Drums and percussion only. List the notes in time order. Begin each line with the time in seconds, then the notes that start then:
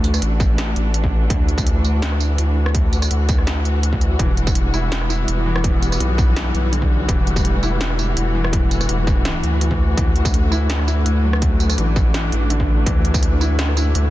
0.04 closed hi-hat, tambourine
0.14 cross-stick, tambourine
0.22 closed hi-hat
0.40 kick, tambourine
0.58 snare, closed hi-hat
0.76 closed hi-hat
0.94 closed hi-hat
1.04 kick
1.30 kick, closed hi-hat
1.48 closed hi-hat
1.58 kick, tambourine
1.67 closed hi-hat
1.85 tambourine
2.02 snare, closed hi-hat
2.12 cross-stick
2.20 tambourine
2.38 closed hi-hat
2.66 cross-stick
2.75 kick, closed hi-hat
2.93 closed hi-hat, tambourine
3.02 cross-stick, tambourine
3.11 closed hi-hat
3.29 kick, closed hi-hat, tambourine
3.38 cross-stick
3.47 snare, closed hi-hat
3.65 closed hi-hat
3.83 closed hi-hat
3.93 kick
4.01 closed hi-hat
4.19 kick, closed hi-hat
4.37 closed hi-hat
4.47 kick, tambourine
4.55 closed hi-hat
4.74 tambourine
4.92 snare, closed hi-hat
5.01 cross-stick
5.10 tambourine
5.28 closed hi-hat
5.56 cross-stick
5.64 kick, closed hi-hat
5.82 closed hi-hat, tambourine
5.92 cross-stick, tambourine
6.00 closed hi-hat
6.18 kick, tambourine
6.36 snare, closed hi-hat
6.55 closed hi-hat
6.73 closed hi-hat
6.82 kick
7.09 kick, closed hi-hat
7.27 closed hi-hat
7.36 kick, tambourine
7.45 closed hi-hat
7.63 tambourine
7.81 snare, closed hi-hat
7.90 cross-stick
7.99 tambourine
8.17 closed hi-hat
8.45 cross-stick
8.53 kick, closed hi-hat
8.71 closed hi-hat, tambourine
8.81 cross-stick, tambourine
8.89 closed hi-hat
9.07 kick, tambourine
9.25 snare, closed hi-hat
9.43 closed hi-hat
9.61 closed hi-hat
9.71 kick
9.97 kick, closed hi-hat
10.16 closed hi-hat
10.25 kick, tambourine
10.34 closed hi-hat
10.52 tambourine
10.70 snare, closed hi-hat
10.79 cross-stick
10.88 tambourine
11.06 closed hi-hat
11.33 cross-stick
11.42 kick, closed hi-hat
11.60 closed hi-hat, tambourine
11.70 cross-stick, tambourine
11.78 closed hi-hat
11.96 kick, tambourine
12.14 snare, closed hi-hat
12.32 closed hi-hat
12.50 closed hi-hat
12.60 kick
12.86 kick, closed hi-hat
13.05 closed hi-hat
13.14 kick, tambourine
13.23 closed hi-hat
13.41 tambourine
13.59 snare, closed hi-hat
13.69 cross-stick
13.77 tambourine
13.95 closed hi-hat